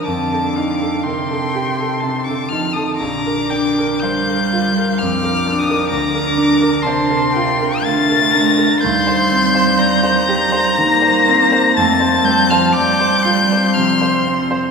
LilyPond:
<<
  \new Staff \with { instrumentName = "Violin" } { \time 3/4 \key bes \major \tempo 4 = 61 d'''4 c'''4~ c'''16 d'''16 f'''16 ees'''16 | d'''4 g'''4 \tuplet 3/2 { f'''4 ees'''8 } | d'''4 c'''4 a'''4 | g'''2 bes'''4 |
a'''8 g'''16 f'''16 g'''4 f'''8 r8 | }
  \new Staff \with { instrumentName = "Violin" } { \time 3/4 \key bes \major a''8 f''8 g''4 a''4 | bes''8 g''8 f''4 d'''4 | bes''4 a''8 g''8 f''8 bes''8 | c'''4 bes''2 |
a''4 d'''8 c'''4. | }
  \new Staff \with { instrumentName = "Grand piano" } { \time 3/4 \key bes \major f,16 a'16 ees'16 a'16 bes'16 a'16 g'16 a'16 c16 a'16 ees'16 a'16 | bes,,16 bes'16 d'16 bes'16 c''16 bes'16 f'16 bes'16 f,16 bes'16 d'16 bes'16 | d,16 bes'16 d'16 bes'16 c''16 bes'16 f'16 bes'16 d16 bes'16 d'16 bes'16 | ees,16 c''16 c'16 c''16 d''16 c''16 g'16 c''16 ees16 c''16 c'16 c''16 |
f,16 c''16 c'16 c''16 d''16 c''16 f'16 c''16 c16 c''16 c'16 c''16 | }
  \new Staff \with { instrumentName = "Cello" } { \clef bass \time 3/4 \key bes \major d4 c4~ c16 d16 f16 ees16 | d4 g4 \tuplet 3/2 { f4 ees8 } | d4 c4 a4 | g2 bes4 |
a8 g16 f16 g4 f8 r8 | }
>>